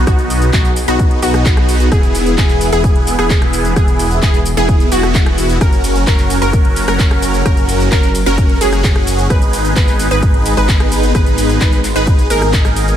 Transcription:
Already playing: B3 D#4
0.07 B1 B3 D#4 F#4 G#4, kick, cross-stick, closed hi-hat, cabasa
0.19 closed hi-hat, cabasa
0.30 open hi-hat, cabasa
0.42 closed hi-hat, cabasa
0.53 B1 B3 D#4 F#4, kick, clap, closed hi-hat, cabasa
0.65 closed hi-hat, cabasa
0.76 open hi-hat, cabasa
0.88 B1 B3 D#4 F#4, closed hi-hat, cabasa
0.99 kick, closed hi-hat, cabasa
1.11 closed hi-hat
1.22 B1 B3 D#4 F#4, open hi-hat, cabasa
1.34 cross-stick, closed hi-hat, cabasa
1.46 kick, clap, closed hi-hat, cabasa
1.57 cross-stick, closed hi-hat
1.69 open hi-hat, cabasa
1.80 closed hi-hat, cabasa
1.92 E1 E3 B3 E4 G#4, kick, cross-stick, closed hi-hat, cabasa
2.03 closed hi-hat, cabasa
2.15 open hi-hat, cabasa
2.26 closed hi-hat, cabasa
2.38 E1 E4 G#4, kick, clap, closed hi-hat, cabasa
2.49 clap, closed hi-hat, cabasa
2.61 open hi-hat, cabasa
2.72 E1 B3 E4 G#4, closed hi-hat, cabasa
2.84 kick, closed hi-hat, cabasa
2.96 closed hi-hat
3.07 open hi-hat, cabasa
3.19 E1 B3 E4 G#4, cross-stick, closed hi-hat, cabasa
3.30 kick, clap, closed hi-hat, cabasa
3.42 cross-stick, closed hi-hat
3.53 open hi-hat, cabasa
3.65 closed hi-hat, cabasa
3.76 E1 B3 G#4, kick, cross-stick, closed hi-hat, cabasa
3.88 closed hi-hat, cabasa
3.99 open hi-hat, cabasa
4.11 closed hi-hat, cabasa
4.22 E1 B3 E4 G#4, kick, clap, closed hi-hat, cabasa
4.34 closed hi-hat, cabasa
4.46 open hi-hat, cabasa
4.57 E1 B3 E4 G#4, closed hi-hat, cabasa
4.69 kick, closed hi-hat, cabasa
4.80 closed hi-hat, cabasa
4.92 E1 B3 E4 F#4, open hi-hat, cabasa
5.03 cross-stick, closed hi-hat, cabasa
5.15 kick, clap, closed hi-hat, cabasa
5.26 cross-stick, closed hi-hat
5.38 open hi-hat, cabasa
5.49 closed hi-hat, cabasa
5.61 F#1 F#3 C#4 F#4 A#4, kick, cross-stick, closed hi-hat, ride, cabasa
5.73 closed hi-hat, cabasa
5.84 open hi-hat, ride, cabasa
5.96 closed hi-hat, cabasa
6.07 F#1 F#4 A#4, kick, clap, closed hi-hat, ride, cabasa
6.19 clap, closed hi-hat, cabasa
6.30 open hi-hat, ride, cabasa
6.42 F#1 C#4 F#4 A#4, closed hi-hat, cabasa
6.53 kick, closed hi-hat, ride, cabasa
6.65 closed hi-hat
6.76 open hi-hat, ride, cabasa
6.88 F#1 C#4 F#4 A#4, cross-stick, closed hi-hat, cabasa
6.99 kick, clap, closed hi-hat, ride, cabasa
7.11 cross-stick, closed hi-hat
7.22 open hi-hat, ride, cabasa
7.34 closed hi-hat, cabasa
7.46 F#1 C#4 F#4 A#4, kick, cross-stick, closed hi-hat, ride, cabasa
7.57 closed hi-hat, cabasa
7.69 open hi-hat, ride, cabasa
7.80 closed hi-hat, cabasa
7.92 F#1 C#4 F#4 A#4, kick, clap, closed hi-hat, ride, cabasa
8.03 closed hi-hat, cabasa
8.15 open hi-hat, ride, cabasa
8.26 F#1 C#4 F#4 A#4, closed hi-hat, cabasa
8.38 kick, closed hi-hat, ride, cabasa
8.49 closed hi-hat
8.61 F#1 C#4 F#4 G#4, open hi-hat, ride, cabasa
8.73 cross-stick, closed hi-hat, cabasa
8.84 kick, clap, closed hi-hat, ride, cabasa
8.96 cross-stick, closed hi-hat
9.07 open hi-hat, ride, cabasa
9.19 closed hi-hat, cabasa
9.30 G#1 G#3 B3 D#4 B4, kick, cross-stick, closed hi-hat, ride, cabasa
9.42 closed hi-hat, cabasa
9.53 open hi-hat, ride, cabasa
9.65 closed hi-hat, cabasa
9.76 G#1 D#4 G#4 B4, kick, clap, closed hi-hat, ride, cabasa
9.88 clap, closed hi-hat, cabasa
9.99 open hi-hat, ride, cabasa
10.11 G#1 D#4 G#4 B4, closed hi-hat, cabasa
10.23 kick, closed hi-hat, ride, cabasa
10.34 closed hi-hat
10.46 open hi-hat, ride, cabasa
10.57 G#1 D#4 G#4 B4, cross-stick, closed hi-hat, cabasa
10.69 kick, clap, closed hi-hat, ride, cabasa
10.80 cross-stick, closed hi-hat
10.92 open hi-hat, ride, cabasa
11.03 closed hi-hat, cabasa
11.15 G#1 D#4 G#4 B4, kick, cross-stick, closed hi-hat, ride, cabasa
11.26 closed hi-hat, cabasa
11.38 open hi-hat, ride, cabasa
11.49 closed hi-hat, cabasa
11.61 G#1 D#4 B4, kick, clap, closed hi-hat, ride, cabasa
11.73 closed hi-hat, cabasa
11.84 clap, open hi-hat, ride, cabasa
11.96 G#1 D#4 G#4 B4, closed hi-hat, cabasa
12.07 kick, closed hi-hat, ride, cabasa
12.19 closed hi-hat, cabasa
12.30 G#1 D#4 G#4 A#4, open hi-hat, ride, cabasa
12.42 cross-stick, closed hi-hat, cabasa
12.53 kick, clap, closed hi-hat, ride, cabasa
12.65 cross-stick, closed hi-hat, cabasa
12.76 open hi-hat, ride, cabasa
12.88 closed hi-hat, cabasa

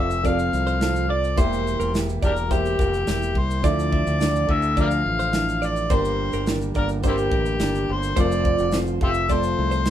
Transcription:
Already playing: F1 C4 F4 A4
0.00 C4 E5
0.10 shaker
0.23 F3 C4 F4 A4 D5 F5, kick, shaker
0.39 shaker
0.53 C2, shaker
0.67 C5, shaker
0.79 F3 C4 F4 A4, snare, shaker
0.96 shaker
1.08 F4 A4 D5
1.24 shaker
1.36 E1 E3 G3 A#3 E4 G4 C5 E5, kick, shaker
1.53 shaker
1.67 shaker
1.80 E1 A#4, shaker
1.93 G3 A#3 E4 G4, snare, shaker
2.09 shaker
2.22 E1 A#3 D4 E4 G4 A#4 D5, kick, shaker
2.36 shaker
2.49 E3 G3 A#3 E4 G4 C5 E5, kick, shaker
2.53 G4
2.65 shaker
2.79 F1 A#4, kick, shaker
2.94 shaker
3.06 E1 G3 A#3 E4 G4, snare, shaker
3.22 shaker
3.35 C2 C5, kick
3.51 shaker
3.62 D2 D3 F3 D4 E4 F4 A4 D5 E5, kick, shaker
3.67 D5
3.79 shaker
3.92 E5, kick
4.07 D2, shaker
4.20 F3 D4 E4 A4 D5, snare, shaker
4.36 shaker
4.47 D2 D4 E4 A4 E5, kick
4.52 E5
4.62 shaker
4.76 D3 F3 D4 F4 A4 D5, kick, shaker
4.81 A#4 D5 F5
4.91 shaker
5.06 A1
5.19 C5, shaker
5.32 F3 D4 E4 A4, snare, shaker
5.49 shaker
5.62 D5, shaker
5.76 shaker
5.89 G1 G2 D3 G3 A#3 D4 G4 A#4 C5 D5, kick, shaker
5.94 C5
6.05 shaker
6.33 G1 A#4, shaker
6.46 G3 A#3 D4 A#4, snare, shaker
6.61 shaker
6.74 G1 G3 A#3 D4 A#4 D5, kick, shaker
6.89 shaker
7.02 G2 D3 G3 A#3 D4 G4 A#4 C5 D5, kick, shaker
7.08 C4 E4 G4
7.18 shaker
7.32 A1 A#4, kick
7.46 shaker
7.59 G1 G3 A#3 D4 A#4, snare, shaker
7.75 shaker
7.89 G1 C5
8.03 shaker
8.16 F1 F3 A3 C4 F4 A4 A#4 C5, kick, shaker
8.21 C5 D5
8.32 shaker
8.45 D5, kick
8.58 F1, shaker
8.71 F3 C4 F4 A4 C5, snare, shaker
8.87 shaker
9.01 F1 C4 F4 G4 A4 C5 E5 F5, kick
9.14 shaker
9.29 F3 A3 C4 F4 A4 C5 D5, kick, shaker
9.43 shaker
9.59 C2
9.71 C5, shaker
9.86 F3, snare, shaker

